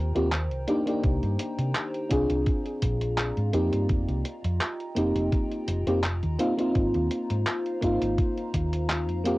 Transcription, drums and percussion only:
0.16 closed hi-hat
0.32 clap, closed hi-hat
0.51 closed hi-hat
0.68 closed hi-hat
0.87 closed hi-hat
1.04 kick, closed hi-hat
1.23 closed hi-hat
1.39 closed hi-hat
1.59 closed hi-hat
1.75 clap, closed hi-hat
1.94 closed hi-hat
2.11 kick, closed hi-hat
2.30 closed hi-hat
2.46 kick, closed hi-hat
2.66 closed hi-hat
2.82 kick, closed hi-hat
3.01 closed hi-hat
3.18 clap, closed hi-hat
3.37 closed hi-hat
3.53 closed hi-hat
3.73 closed hi-hat
3.89 kick, closed hi-hat
4.09 closed hi-hat
4.25 closed hi-hat
4.44 closed hi-hat
4.61 clap, closed hi-hat
4.80 closed hi-hat
4.97 closed hi-hat
5.16 closed hi-hat
5.32 kick, closed hi-hat
5.52 closed hi-hat
5.68 closed hi-hat
5.87 closed hi-hat
6.03 clap, closed hi-hat
6.23 closed hi-hat
6.39 closed hi-hat
6.59 closed hi-hat
6.75 kick, closed hi-hat
6.94 closed hi-hat
7.11 closed hi-hat
7.30 closed hi-hat
7.47 clap, closed hi-hat
7.66 closed hi-hat
7.82 kick, closed hi-hat
8.02 closed hi-hat
8.18 kick, closed hi-hat
8.37 closed hi-hat
8.54 kick, closed hi-hat
8.73 closed hi-hat
8.90 clap, closed hi-hat
9.09 closed hi-hat
9.25 closed hi-hat

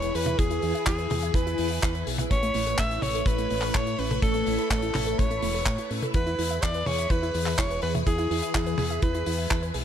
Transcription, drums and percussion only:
0.02 closed hi-hat
0.15 open hi-hat
0.26 closed hi-hat, high tom
0.39 kick, closed hi-hat
0.51 closed hi-hat
0.62 open hi-hat
0.75 closed hi-hat
0.86 kick, clap, closed hi-hat
0.98 closed hi-hat
1.10 open hi-hat, high tom
1.23 closed hi-hat
1.34 kick, closed hi-hat
1.47 closed hi-hat
1.58 open hi-hat
1.71 open hi-hat
1.82 kick, clap, closed hi-hat
1.95 closed hi-hat
2.07 open hi-hat
2.18 closed hi-hat, high tom
2.31 kick, closed hi-hat
2.43 closed hi-hat
2.54 open hi-hat
2.67 closed hi-hat
2.78 kick, clap, closed hi-hat
2.91 closed hi-hat
3.02 open hi-hat, high tom
3.15 closed hi-hat
3.26 kick, closed hi-hat
3.38 closed hi-hat
3.50 open hi-hat
3.61 clap, open hi-hat
3.75 kick, clap
3.87 closed hi-hat
3.99 open hi-hat
4.11 closed hi-hat, high tom
4.22 kick, closed hi-hat
4.34 closed hi-hat
4.46 open hi-hat
4.59 closed hi-hat
4.70 kick, clap, closed hi-hat
4.82 closed hi-hat
4.94 clap, open hi-hat, high tom
5.06 closed hi-hat
5.19 kick, closed hi-hat
5.31 closed hi-hat
5.42 open hi-hat
5.54 open hi-hat
5.66 kick, clap
5.78 closed hi-hat
5.91 open hi-hat
6.02 closed hi-hat, high tom
6.14 kick, closed hi-hat
6.27 closed hi-hat
6.39 open hi-hat
6.50 closed hi-hat
6.62 kick, clap, closed hi-hat
6.74 closed hi-hat
6.86 open hi-hat, high tom
6.98 closed hi-hat
7.10 kick, closed hi-hat
7.23 closed hi-hat
7.34 open hi-hat
7.46 clap, open hi-hat
7.58 kick, clap
7.71 closed hi-hat
7.82 open hi-hat
7.95 closed hi-hat, high tom
8.07 kick, closed hi-hat
8.18 closed hi-hat
8.31 open hi-hat
8.42 closed hi-hat
8.55 kick, clap, closed hi-hat
8.66 closed hi-hat
8.78 open hi-hat, high tom
8.90 closed hi-hat
9.02 kick, closed hi-hat
9.15 closed hi-hat
9.26 open hi-hat
9.38 open hi-hat
9.50 kick, clap, closed hi-hat
9.63 closed hi-hat
9.74 open hi-hat

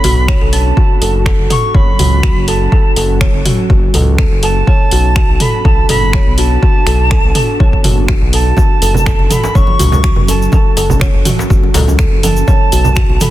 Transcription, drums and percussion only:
0.04 mid tom, open hi-hat
0.28 finger snap, kick
0.53 open hi-hat
0.77 kick
1.02 open hi-hat
1.26 finger snap, kick
1.50 mid tom, open hi-hat
1.75 kick
1.99 mid tom, open hi-hat
2.23 finger snap, kick
2.48 open hi-hat
2.72 kick
2.96 open hi-hat
3.21 finger snap, kick
3.46 mid tom, open hi-hat
3.70 kick
3.94 mid tom, open hi-hat
4.18 finger snap, kick
4.43 open hi-hat
4.67 kick
4.91 open hi-hat
5.16 finger snap, kick
5.40 mid tom, open hi-hat
5.65 kick
5.89 mid tom, open hi-hat
6.13 finger snap, kick
6.38 open hi-hat
6.63 kick
6.87 finger snap, open hi-hat
7.11 finger snap, kick
7.35 mid tom, open hi-hat
7.60 kick
7.73 kick
7.84 mid tom, open hi-hat
8.08 finger snap, kick
8.33 open hi-hat
8.57 kick, muted conga, high conga, djembe tone, shaker
8.82 open hi-hat, muted conga, shaker
8.94 low conga, shaker
9.06 finger snap, kick, low conga, shaker
9.19 muted conga
9.30 mid tom, open hi-hat, high conga, shaker
9.44 muted conga, djembe slap, shaker
9.55 kick, djembe bass, shaker
9.67 muted conga, high conga
9.79 mid tom, open hi-hat, djembe tone, shaker
9.92 djembe slap, low conga, shaker
10.03 finger snap, kick, muted conga, high conga, shaker
10.16 low conga
10.27 open hi-hat, muted conga, djembe tone, shaker
10.42 shaker
10.52 kick, muted conga, high conga, djembe tone, shaker
10.77 open hi-hat, muted conga, shaker
10.90 low conga, djembe bass, shaker
11.00 finger snap, kick, low conga, shaker
11.14 muted conga
11.25 mid tom, open hi-hat, high conga, shaker
11.38 muted conga, djembe slap, shaker
11.50 kick, djembe bass, shaker
11.63 muted conga, djembe tone
11.74 mid tom, open hi-hat, djembe slap, shaker
11.87 high conga, djembe tone, shaker
11.99 finger snap, kick, muted conga, shaker
12.23 open hi-hat, muted conga, high conga, djembe tone, shaker
12.36 shaker
12.47 kick, muted conga, high conga, djembe tone, shaker
12.72 open hi-hat, muted conga, shaker
12.85 low conga, shaker
12.96 finger snap, kick, low conga, shaker
13.09 muted conga
13.21 mid tom, open hi-hat, high conga, shaker

